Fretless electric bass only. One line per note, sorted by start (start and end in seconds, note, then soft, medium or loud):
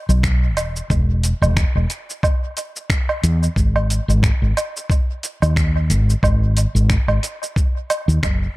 0.09 0.56 B1 medium
0.56 0.80 E1 loud
0.90 1.32 E1 medium
1.42 1.62 E1 loud
1.75 1.85 E1 medium
3.24 3.47 E2 loud
3.56 3.98 G#1 medium
4.08 4.29 G#1 loud
4.42 4.51 G#1 medium
5.42 5.91 D#2 medium
5.90 6.13 G#1 loud
6.23 6.65 G#1 loud
6.75 6.95 G#1 loud
7.08 7.18 G#1 medium
8.08 8.18 D#2 loud
8.23 8.46 F#1 medium